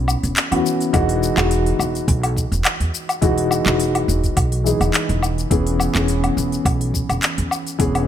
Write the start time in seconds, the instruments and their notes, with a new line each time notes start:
Already playing: upright bass B1, grand piano E3 B3 C#4 G#4
0.08 low woodblock, shaker
0.23 upright bass E1, open hi-hat, shaker
0.37 clap, open hi-hat, shaker
0.51 upright bass E2, grand piano E3 B3 C#4 F#4, open hi-hat, low woodblock
0.66 shaker
0.80 open hi-hat, shaker
0.93 upright bass E1, grand piano E3 G#3 D#4 F#4, kick, open hi-hat, low woodblock, shaker
1.09 open hi-hat
1.23 shaker
1.36 upright bass E1, grand piano E3 G#3 D#4 F#4, clap, open hi-hat, low woodblock, shaker
1.51 open hi-hat, shaker
1.66 open hi-hat
1.79 upright bass E1, low woodblock, shaker
1.95 open hi-hat, shaker
2.08 upright bass B1, kick, open hi-hat, shaker
2.23 open hi-hat, low woodblock
2.37 kick, shaker
2.52 upright bass E1, open hi-hat, shaker
2.65 clap, open hi-hat, low woodblock, shaker
2.80 upright bass E2, open hi-hat
2.94 shaker
3.09 open hi-hat, low woodblock, shaker
3.21 upright bass E1, grand piano E3 G#3 D#4 F#4, kick, open hi-hat, shaker
3.38 open hi-hat
3.51 low woodblock, shaker
3.65 upright bass E1, grand piano E3 G#3 D#4 F#4, clap, open hi-hat, shaker
3.80 open hi-hat, shaker
3.95 open hi-hat, low woodblock
4.08 upright bass E1, shaker
4.24 kick, open hi-hat, shaker
4.37 upright bass B1, kick, open hi-hat, low woodblock, shaker
4.52 open hi-hat
4.64 grand piano E3 G#3 D#4 G#4, shaker
4.81 upright bass E1, open hi-hat, low woodblock, shaker
4.94 clap, open hi-hat, shaker
5.09 upright bass E1, open hi-hat
5.23 low woodblock, shaker
5.38 open hi-hat, shaker
5.50 upright bass E1, grand piano E3 B3 C#4 G#4, kick, open hi-hat, shaker
5.67 open hi-hat
5.80 low woodblock, shaker
5.94 upright bass E1, grand piano E3 B3 C#4 G#4, clap, open hi-hat, shaker
6.08 open hi-hat, shaker
6.24 open hi-hat, low woodblock
6.37 upright bass E1, shaker
6.52 open hi-hat, shaker
6.65 upright bass B1, kick, open hi-hat, low woodblock, shaker
6.81 open hi-hat
6.94 kick, shaker
7.09 upright bass E1, open hi-hat, low woodblock, shaker
7.23 clap, open hi-hat, shaker
7.38 upright bass E2, open hi-hat
7.51 low woodblock, shaker
7.67 open hi-hat, shaker
7.79 upright bass E1, grand piano E3 B3 C#4 G#4, kick, open hi-hat, shaker
7.95 open hi-hat, low woodblock